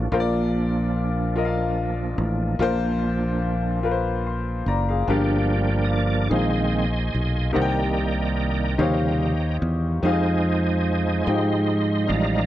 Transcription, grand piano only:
0.00 0.14 A#3 medium
0.00 0.14 D4 medium
0.00 0.12 F4 medium
0.00 0.14 C#5 medium
0.00 0.14 D5 medium
0.12 1.32 A#2 medium
0.12 1.06 F4 medium
0.12 1.07 A#4 medium
0.12 0.19 C5 medium
0.20 1.10 D5 loud
1.36 2.30 F4 medium
1.36 2.31 A#4 medium
1.36 1.43 D#5 medium
1.45 2.35 F5 medium
2.60 3.80 A#2 medium
2.60 3.54 F4 loud
2.60 3.55 A#4 medium
2.60 3.55 C5 loud
3.83 4.78 F4 medium
3.83 4.25 A#4 medium
3.83 3.91 B4 medium
3.91 4.29 C5 medium
4.27 4.65 C6 medium
4.68 4.87 D5 medium
4.68 4.87 A#5 medium
4.89 5.27 G#4 medium
4.89 5.09 F5 medium
5.08 6.28 G2 medium
5.08 6.02 D4 medium
5.08 6.02 F4 medium
5.08 6.03 G4 medium
5.08 6.03 A#4 medium
5.08 6.03 F5 medium
6.29 7.50 A#2 medium
6.29 7.24 D#4 medium
6.29 7.25 G#4 medium
6.29 7.25 A#4 medium
6.29 7.25 C5 medium
6.29 7.26 F5 medium
7.53 8.74 C3 medium
7.53 8.48 D#4 medium
7.53 8.48 G4 medium
7.53 8.48 A#4 medium
7.53 8.49 C5 medium
7.53 7.61 F#5 medium
7.62 8.53 G5 medium
8.78 9.98 D#3 medium
8.78 9.73 D#4 medium
8.78 9.73 G4 medium
8.78 9.73 C5 medium
8.78 9.73 C#5 medium
8.78 9.74 F5 medium
10.03 10.97 D#4 medium
10.03 10.98 F4 medium
10.03 10.10 G4 medium
10.03 10.98 C5 medium
10.03 10.98 F5 medium
10.11 11.01 G#4 medium
11.27 12.21 D#4 medium
11.27 12.21 F4 medium
11.27 11.33 G4 medium
11.27 12.22 C5 medium
11.27 12.22 G5 medium
11.34 12.25 G#4 medium

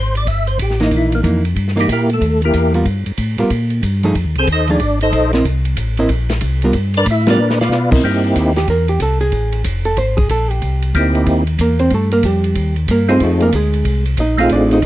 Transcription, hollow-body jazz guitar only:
0.80 1.21 E3 medium
0.80 1.22 A#3 medium
0.80 1.22 D#4 medium
1.23 1.42 E3 medium
1.23 1.42 A#3 medium
1.23 1.42 D#4 medium
1.76 1.87 E3 medium
1.76 1.87 A#3 medium
1.76 1.87 D#4 medium
2.74 2.84 G3 medium
2.74 2.85 B3 medium
2.74 2.85 F4 medium
2.74 2.85 A#4 medium
3.39 3.49 G3 medium
3.39 3.49 B3 medium
3.39 3.49 F4 medium
3.39 3.50 A#4 medium
4.04 4.14 F3 medium
4.04 4.14 A3 medium
4.04 4.14 D#4 medium
4.04 4.15 G#4 medium
4.69 4.79 F3 medium
4.69 4.79 A3 medium
4.69 4.80 D#4 medium
4.69 4.80 G#4 medium
5.34 5.44 C4 medium
5.34 5.44 E4 medium
5.34 5.44 A#4 medium
5.34 5.44 D#5 medium
5.99 6.09 C4 medium
5.99 6.09 E4 medium
5.99 6.09 A#4 medium
5.99 6.09 D#5 medium
6.64 6.74 G3 medium
6.64 6.74 B3 medium
6.64 6.74 F4 medium
6.64 6.74 A#4 medium
7.27 7.37 G3 medium
7.27 7.38 B3 medium
7.27 7.38 F4 medium
7.27 7.38 A#4 medium
7.91 8.02 C4 medium
7.91 8.02 E4 medium
7.91 8.02 A#4 medium
7.91 8.02 D#5 medium
8.57 8.68 G4 medium
8.70 8.89 A#4 medium
8.89 9.00 G4 medium
9.02 9.20 A4 medium
9.21 9.62 G#4 medium
9.85 9.97 A4 medium
9.98 10.17 C5 medium
10.17 10.29 G#4 medium
10.31 10.51 A4 medium
10.51 10.94 G4 medium
11.61 11.80 A#3 medium
11.61 11.80 A#4 medium
11.80 11.91 C4 medium
11.80 11.91 C5 medium
11.94 12.13 A3 medium
11.94 12.12 A4 medium
12.13 12.24 A#3 medium
12.13 12.24 A#4 medium
12.25 12.74 G3 soft
12.25 12.74 G4 medium
12.91 13.10 A#3 medium
12.91 13.09 A#4 medium
13.10 13.21 C4 medium
13.10 13.21 C5 medium
13.24 13.42 A3 medium
13.24 13.42 A4 medium
13.42 13.53 A#3 medium
13.42 13.53 A#4 medium
13.55 14.04 G#3 medium
13.55 14.03 G#4 medium
14.20 14.39 D#4 medium
14.20 14.39 D#5 medium
14.40 14.51 F4 medium
14.40 14.51 F5 medium
14.53 14.71 D4 medium
14.53 14.71 D5 medium
14.73 14.83 D#4 medium
14.73 14.83 D#5 loud

